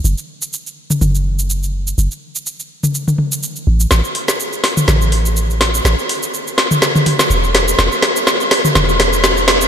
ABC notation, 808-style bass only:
X:1
M:4/4
L:1/8
Q:"Swing 16ths" 1/4=124
K:A
V:1 name="808-style bass" clef=bass
F,,, z3 F,,,4 | F,,, z6 A,,, | A,,, z3 A,,,4 | A,,, z4 z E,,,2 |
E,,, z3 E,,,4 |]